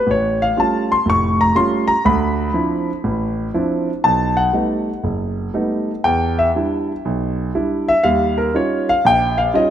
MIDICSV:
0, 0, Header, 1, 2, 480
1, 0, Start_track
1, 0, Tempo, 497925
1, 72, Time_signature, 4, 2, 24, 8
1, 9352, End_track
2, 0, Start_track
2, 0, Title_t, "Grand piano"
2, 0, Program_c, 0, 0
2, 66, Note_on_c, 0, 33, 66
2, 105, Note_on_c, 0, 73, 93
2, 403, Note_off_c, 0, 73, 0
2, 406, Note_on_c, 0, 77, 97
2, 484, Note_off_c, 0, 33, 0
2, 549, Note_on_c, 0, 55, 51
2, 549, Note_on_c, 0, 57, 52
2, 550, Note_off_c, 0, 77, 0
2, 552, Note_on_c, 0, 61, 46
2, 554, Note_on_c, 0, 65, 59
2, 576, Note_on_c, 0, 81, 90
2, 876, Note_off_c, 0, 81, 0
2, 884, Note_on_c, 0, 84, 102
2, 886, Note_off_c, 0, 57, 0
2, 887, Note_off_c, 0, 55, 0
2, 888, Note_off_c, 0, 61, 0
2, 889, Note_off_c, 0, 65, 0
2, 1018, Note_on_c, 0, 45, 68
2, 1021, Note_on_c, 0, 29, 67
2, 1027, Note_off_c, 0, 84, 0
2, 1056, Note_on_c, 0, 85, 111
2, 1354, Note_off_c, 0, 85, 0
2, 1357, Note_on_c, 0, 82, 103
2, 1436, Note_off_c, 0, 45, 0
2, 1438, Note_off_c, 0, 29, 0
2, 1497, Note_on_c, 0, 55, 62
2, 1500, Note_on_c, 0, 61, 53
2, 1501, Note_on_c, 0, 57, 52
2, 1502, Note_off_c, 0, 82, 0
2, 1505, Note_on_c, 0, 65, 68
2, 1505, Note_on_c, 0, 84, 104
2, 1808, Note_on_c, 0, 82, 106
2, 1816, Note_off_c, 0, 84, 0
2, 1837, Note_off_c, 0, 55, 0
2, 1839, Note_off_c, 0, 61, 0
2, 1840, Note_off_c, 0, 57, 0
2, 1841, Note_off_c, 0, 65, 0
2, 1964, Note_off_c, 0, 82, 0
2, 1978, Note_on_c, 0, 38, 78
2, 1983, Note_on_c, 0, 83, 99
2, 2392, Note_off_c, 0, 38, 0
2, 2448, Note_on_c, 0, 53, 55
2, 2449, Note_on_c, 0, 60, 49
2, 2450, Note_on_c, 0, 62, 52
2, 2455, Note_on_c, 0, 64, 57
2, 2790, Note_off_c, 0, 53, 0
2, 2791, Note_off_c, 0, 60, 0
2, 2791, Note_off_c, 0, 62, 0
2, 2794, Note_off_c, 0, 64, 0
2, 2932, Note_on_c, 0, 33, 70
2, 3349, Note_off_c, 0, 33, 0
2, 3375, Note_off_c, 0, 83, 0
2, 3415, Note_on_c, 0, 53, 49
2, 3415, Note_on_c, 0, 60, 51
2, 3416, Note_on_c, 0, 64, 63
2, 3417, Note_on_c, 0, 62, 50
2, 3753, Note_off_c, 0, 53, 0
2, 3753, Note_off_c, 0, 60, 0
2, 3753, Note_off_c, 0, 64, 0
2, 3754, Note_off_c, 0, 62, 0
2, 3895, Note_on_c, 0, 81, 100
2, 3898, Note_on_c, 0, 35, 74
2, 4207, Note_off_c, 0, 81, 0
2, 4210, Note_on_c, 0, 78, 94
2, 4311, Note_off_c, 0, 35, 0
2, 4362, Note_off_c, 0, 78, 0
2, 4369, Note_on_c, 0, 55, 52
2, 4371, Note_on_c, 0, 57, 52
2, 4375, Note_on_c, 0, 59, 46
2, 4380, Note_on_c, 0, 63, 59
2, 4711, Note_off_c, 0, 55, 0
2, 4712, Note_off_c, 0, 57, 0
2, 4714, Note_off_c, 0, 59, 0
2, 4716, Note_off_c, 0, 63, 0
2, 4855, Note_on_c, 0, 30, 65
2, 5277, Note_off_c, 0, 30, 0
2, 5340, Note_on_c, 0, 55, 53
2, 5342, Note_on_c, 0, 57, 51
2, 5342, Note_on_c, 0, 59, 49
2, 5349, Note_on_c, 0, 63, 58
2, 5686, Note_off_c, 0, 55, 0
2, 5687, Note_off_c, 0, 57, 0
2, 5687, Note_off_c, 0, 59, 0
2, 5690, Note_off_c, 0, 63, 0
2, 5824, Note_on_c, 0, 79, 101
2, 5830, Note_on_c, 0, 40, 77
2, 6144, Note_off_c, 0, 79, 0
2, 6156, Note_on_c, 0, 76, 96
2, 6250, Note_off_c, 0, 40, 0
2, 6250, Note_off_c, 0, 76, 0
2, 6320, Note_on_c, 0, 62, 48
2, 6321, Note_on_c, 0, 55, 51
2, 6327, Note_on_c, 0, 64, 57
2, 6661, Note_off_c, 0, 55, 0
2, 6661, Note_off_c, 0, 62, 0
2, 6664, Note_off_c, 0, 64, 0
2, 6798, Note_on_c, 0, 35, 72
2, 7218, Note_off_c, 0, 35, 0
2, 7276, Note_on_c, 0, 55, 57
2, 7279, Note_on_c, 0, 62, 47
2, 7279, Note_on_c, 0, 64, 66
2, 7601, Note_on_c, 0, 76, 102
2, 7619, Note_off_c, 0, 55, 0
2, 7620, Note_off_c, 0, 62, 0
2, 7620, Note_off_c, 0, 64, 0
2, 7746, Note_on_c, 0, 77, 101
2, 7753, Note_off_c, 0, 76, 0
2, 7753, Note_on_c, 0, 55, 79
2, 7755, Note_on_c, 0, 39, 73
2, 8067, Note_off_c, 0, 77, 0
2, 8075, Note_on_c, 0, 70, 81
2, 8172, Note_off_c, 0, 55, 0
2, 8173, Note_off_c, 0, 39, 0
2, 8229, Note_off_c, 0, 70, 0
2, 8236, Note_on_c, 0, 55, 55
2, 8237, Note_on_c, 0, 61, 55
2, 8240, Note_on_c, 0, 63, 51
2, 8242, Note_on_c, 0, 65, 54
2, 8251, Note_on_c, 0, 73, 87
2, 8558, Note_off_c, 0, 73, 0
2, 8573, Note_on_c, 0, 77, 105
2, 8576, Note_off_c, 0, 55, 0
2, 8576, Note_off_c, 0, 61, 0
2, 8578, Note_off_c, 0, 63, 0
2, 8578, Note_off_c, 0, 65, 0
2, 8716, Note_off_c, 0, 77, 0
2, 8721, Note_on_c, 0, 34, 75
2, 8739, Note_on_c, 0, 79, 116
2, 9040, Note_off_c, 0, 79, 0
2, 9040, Note_on_c, 0, 77, 93
2, 9133, Note_off_c, 0, 34, 0
2, 9188, Note_off_c, 0, 77, 0
2, 9193, Note_on_c, 0, 55, 62
2, 9197, Note_on_c, 0, 61, 55
2, 9199, Note_on_c, 0, 63, 59
2, 9199, Note_on_c, 0, 65, 61
2, 9210, Note_on_c, 0, 75, 97
2, 9352, Note_off_c, 0, 55, 0
2, 9352, Note_off_c, 0, 61, 0
2, 9352, Note_off_c, 0, 63, 0
2, 9352, Note_off_c, 0, 65, 0
2, 9352, Note_off_c, 0, 75, 0
2, 9352, End_track
0, 0, End_of_file